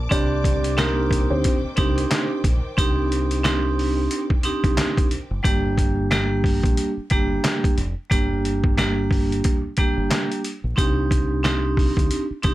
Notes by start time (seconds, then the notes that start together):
Already playing: D6
0.09 C2 D#3 C4 D4 G4 C5 D5 G5, kick, closed hi-hat
0.44 kick, closed hi-hat
0.64 closed hi-hat
0.77 A#3 C4 D4 D#4 G4 A#4, snare, clap, closed hi-hat
1.11 kick, closed hi-hat
1.30 D2 C4 C5
1.44 kick, closed hi-hat
1.64 muted fingered electric bass stroke
1.76 C2 C4 D4 D#4 G4, kick, closed hi-hat
1.98 closed hi-hat
2.11 snare, clap, closed hi-hat
2.44 A#1, kick, closed hi-hat
2.77 C2 C4 D4 D#4 G4, kick, closed hi-hat
3.12 closed hi-hat
3.31 closed hi-hat
3.43 C4 D4 D#4 G4, snare, clap, closed hi-hat
3.79 open hi-hat
4.11 closed hi-hat
4.30 kick
4.43 C4 D4 D#4 G4, closed hi-hat
4.64 C2, kick, closed hi-hat
4.77 snare, clap, closed hi-hat
4.97 kick, closed hi-hat
5.11 closed hi-hat
5.31 F#1
5.43 G1 G3 A#3 D4 G4, kick, closed hi-hat
5.78 kick, closed hi-hat
6.11 G3 A#3 D4 G4, snare, clap, closed hi-hat
6.44 kick, open hi-hat
6.63 A#1, kick, closed hi-hat
6.77 closed hi-hat
6.97 muted fingered electric bass stroke
7.10 G1 G3 A#3 D4 G4, kick, closed hi-hat
7.44 snare, clap, closed hi-hat
7.64 kick, closed hi-hat
7.78 F1, closed hi-hat
8.10 G1 G3 A#3 D4 G4, kick, closed hi-hat
8.45 closed hi-hat
8.64 kick
8.78 G3 A#3 D4 G4, snare, clap, closed hi-hat
9.11 kick, open hi-hat
9.32 closed hi-hat
9.44 kick, closed hi-hat
9.77 G3 A#3 D4 G4, kick, closed hi-hat
9.97 G1
10.11 snare, clap, closed hi-hat
10.32 closed hi-hat
10.45 closed hi-hat
10.64 A#1
10.76 C2 C4 D4 D#4 G4, kick, closed hi-hat
11.11 kick, closed hi-hat
11.43 C4 D4 D#4 G4, snare, clap, closed hi-hat
11.77 kick, open hi-hat
11.97 D2, kick, closed hi-hat
12.11 closed hi-hat
12.31 muted fingered electric bass stroke
12.43 C2 C4 D4 D#4 G4, kick, closed hi-hat